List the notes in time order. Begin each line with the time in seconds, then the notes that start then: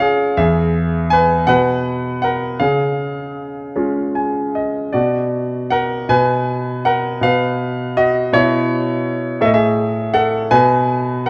Already playing: C#3 F4 C#5
0.00 G#4 F5
0.37 E2 G#4 E5
1.10 B4 G#5
1.47 B2 B4 F#5
2.22 A#4 F#5
2.60 C#3 G#4 F5
3.76 G#3 C#4 F4
4.15 G#5
4.55 D#5
4.93 B2 F#4 D5
5.70 A#4 F#5
6.09 B2 B4 G#5
6.85 A#4 F#5
7.21 B2 B4 F5
7.97 F#4 D#5
8.33 B2 E4 C#5
9.41 A2 A4 E5
9.45 D#5
9.54 G#4 E5
10.14 A4 F#5
10.51 B2 B4 G#5
11.26 A#4 F#5